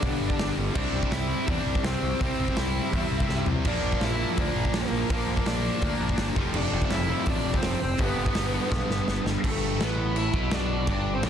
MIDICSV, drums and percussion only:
0, 0, Header, 1, 2, 480
1, 0, Start_track
1, 0, Tempo, 361446
1, 992, Time_signature, 4, 2, 24, 8
1, 15001, End_track
2, 0, Start_track
2, 0, Title_t, "Drums"
2, 31, Note_on_c, 9, 46, 65
2, 37, Note_on_c, 9, 36, 112
2, 163, Note_off_c, 9, 46, 0
2, 169, Note_off_c, 9, 36, 0
2, 396, Note_on_c, 9, 36, 90
2, 518, Note_on_c, 9, 46, 60
2, 524, Note_on_c, 9, 38, 116
2, 529, Note_off_c, 9, 36, 0
2, 651, Note_off_c, 9, 46, 0
2, 657, Note_off_c, 9, 38, 0
2, 1002, Note_on_c, 9, 49, 99
2, 1003, Note_on_c, 9, 36, 116
2, 1135, Note_off_c, 9, 36, 0
2, 1135, Note_off_c, 9, 49, 0
2, 1364, Note_on_c, 9, 36, 92
2, 1481, Note_on_c, 9, 46, 61
2, 1487, Note_on_c, 9, 38, 105
2, 1497, Note_off_c, 9, 36, 0
2, 1614, Note_off_c, 9, 46, 0
2, 1619, Note_off_c, 9, 38, 0
2, 1960, Note_on_c, 9, 46, 72
2, 1965, Note_on_c, 9, 36, 126
2, 2093, Note_off_c, 9, 46, 0
2, 2098, Note_off_c, 9, 36, 0
2, 2328, Note_on_c, 9, 36, 95
2, 2444, Note_on_c, 9, 46, 70
2, 2450, Note_on_c, 9, 38, 109
2, 2461, Note_off_c, 9, 36, 0
2, 2577, Note_off_c, 9, 46, 0
2, 2583, Note_off_c, 9, 38, 0
2, 2930, Note_on_c, 9, 46, 67
2, 2934, Note_on_c, 9, 36, 117
2, 3063, Note_off_c, 9, 46, 0
2, 3066, Note_off_c, 9, 36, 0
2, 3295, Note_on_c, 9, 36, 80
2, 3405, Note_on_c, 9, 46, 62
2, 3410, Note_on_c, 9, 38, 112
2, 3427, Note_off_c, 9, 36, 0
2, 3538, Note_off_c, 9, 46, 0
2, 3543, Note_off_c, 9, 38, 0
2, 3895, Note_on_c, 9, 36, 117
2, 3895, Note_on_c, 9, 46, 66
2, 4027, Note_off_c, 9, 46, 0
2, 4028, Note_off_c, 9, 36, 0
2, 4254, Note_on_c, 9, 36, 89
2, 4370, Note_on_c, 9, 38, 64
2, 4387, Note_off_c, 9, 36, 0
2, 4503, Note_off_c, 9, 38, 0
2, 4598, Note_on_c, 9, 43, 94
2, 4731, Note_off_c, 9, 43, 0
2, 4844, Note_on_c, 9, 49, 104
2, 4853, Note_on_c, 9, 36, 111
2, 4977, Note_off_c, 9, 49, 0
2, 4985, Note_off_c, 9, 36, 0
2, 5211, Note_on_c, 9, 36, 84
2, 5324, Note_on_c, 9, 46, 60
2, 5329, Note_on_c, 9, 38, 117
2, 5344, Note_off_c, 9, 36, 0
2, 5457, Note_off_c, 9, 46, 0
2, 5462, Note_off_c, 9, 38, 0
2, 5810, Note_on_c, 9, 46, 67
2, 5814, Note_on_c, 9, 36, 120
2, 5942, Note_off_c, 9, 46, 0
2, 5947, Note_off_c, 9, 36, 0
2, 6175, Note_on_c, 9, 36, 92
2, 6288, Note_on_c, 9, 46, 66
2, 6294, Note_on_c, 9, 38, 110
2, 6308, Note_off_c, 9, 36, 0
2, 6421, Note_off_c, 9, 46, 0
2, 6426, Note_off_c, 9, 38, 0
2, 6773, Note_on_c, 9, 46, 67
2, 6777, Note_on_c, 9, 36, 116
2, 6906, Note_off_c, 9, 46, 0
2, 6909, Note_off_c, 9, 36, 0
2, 7135, Note_on_c, 9, 36, 90
2, 7250, Note_on_c, 9, 46, 65
2, 7255, Note_on_c, 9, 38, 116
2, 7268, Note_off_c, 9, 36, 0
2, 7383, Note_off_c, 9, 46, 0
2, 7388, Note_off_c, 9, 38, 0
2, 7725, Note_on_c, 9, 46, 67
2, 7735, Note_on_c, 9, 36, 120
2, 7858, Note_off_c, 9, 46, 0
2, 7867, Note_off_c, 9, 36, 0
2, 8093, Note_on_c, 9, 36, 92
2, 8200, Note_on_c, 9, 46, 59
2, 8205, Note_on_c, 9, 38, 113
2, 8226, Note_off_c, 9, 36, 0
2, 8333, Note_off_c, 9, 46, 0
2, 8338, Note_off_c, 9, 38, 0
2, 8450, Note_on_c, 9, 36, 103
2, 8583, Note_off_c, 9, 36, 0
2, 8680, Note_on_c, 9, 49, 104
2, 8813, Note_off_c, 9, 49, 0
2, 9052, Note_on_c, 9, 36, 85
2, 9165, Note_on_c, 9, 46, 63
2, 9170, Note_on_c, 9, 38, 106
2, 9185, Note_off_c, 9, 36, 0
2, 9298, Note_off_c, 9, 46, 0
2, 9303, Note_off_c, 9, 38, 0
2, 9641, Note_on_c, 9, 46, 67
2, 9652, Note_on_c, 9, 36, 125
2, 9774, Note_off_c, 9, 46, 0
2, 9785, Note_off_c, 9, 36, 0
2, 10011, Note_on_c, 9, 36, 98
2, 10124, Note_on_c, 9, 46, 65
2, 10130, Note_on_c, 9, 38, 108
2, 10144, Note_off_c, 9, 36, 0
2, 10257, Note_off_c, 9, 46, 0
2, 10263, Note_off_c, 9, 38, 0
2, 10601, Note_on_c, 9, 46, 64
2, 10613, Note_on_c, 9, 36, 105
2, 10734, Note_off_c, 9, 46, 0
2, 10746, Note_off_c, 9, 36, 0
2, 10972, Note_on_c, 9, 36, 92
2, 11085, Note_on_c, 9, 46, 67
2, 11091, Note_on_c, 9, 38, 111
2, 11105, Note_off_c, 9, 36, 0
2, 11218, Note_off_c, 9, 46, 0
2, 11223, Note_off_c, 9, 38, 0
2, 11576, Note_on_c, 9, 36, 119
2, 11581, Note_on_c, 9, 38, 75
2, 11709, Note_off_c, 9, 36, 0
2, 11713, Note_off_c, 9, 38, 0
2, 11827, Note_on_c, 9, 38, 74
2, 11960, Note_off_c, 9, 38, 0
2, 12057, Note_on_c, 9, 38, 96
2, 12190, Note_off_c, 9, 38, 0
2, 12300, Note_on_c, 9, 38, 98
2, 12432, Note_off_c, 9, 38, 0
2, 12536, Note_on_c, 9, 36, 108
2, 12542, Note_on_c, 9, 49, 113
2, 12542, Note_on_c, 9, 57, 62
2, 12669, Note_off_c, 9, 36, 0
2, 12675, Note_off_c, 9, 49, 0
2, 12675, Note_off_c, 9, 57, 0
2, 13018, Note_on_c, 9, 57, 60
2, 13024, Note_on_c, 9, 38, 108
2, 13151, Note_off_c, 9, 57, 0
2, 13156, Note_off_c, 9, 38, 0
2, 13490, Note_on_c, 9, 57, 70
2, 13623, Note_off_c, 9, 57, 0
2, 13726, Note_on_c, 9, 36, 108
2, 13859, Note_off_c, 9, 36, 0
2, 13959, Note_on_c, 9, 57, 59
2, 13964, Note_on_c, 9, 38, 115
2, 14092, Note_off_c, 9, 57, 0
2, 14097, Note_off_c, 9, 38, 0
2, 14440, Note_on_c, 9, 36, 103
2, 14440, Note_on_c, 9, 57, 68
2, 14573, Note_off_c, 9, 36, 0
2, 14573, Note_off_c, 9, 57, 0
2, 14911, Note_on_c, 9, 57, 71
2, 14917, Note_on_c, 9, 38, 113
2, 15001, Note_off_c, 9, 38, 0
2, 15001, Note_off_c, 9, 57, 0
2, 15001, End_track
0, 0, End_of_file